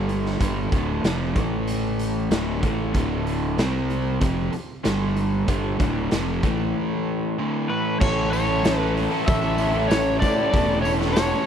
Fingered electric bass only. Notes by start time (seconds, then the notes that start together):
Already playing: G1
0.41 G1
0.72 D1
1.04 F1
1.36 A1
2.31 D1
2.63 A1
2.95 D1
3.58 C2
4.22 F1
4.54 muted fingered electric bass stroke
4.86 G1
5.48 G1
5.80 D1
6.12 F1
6.43 A1
8.02 A1
9.28 A1
10.22 A2
10.54 E1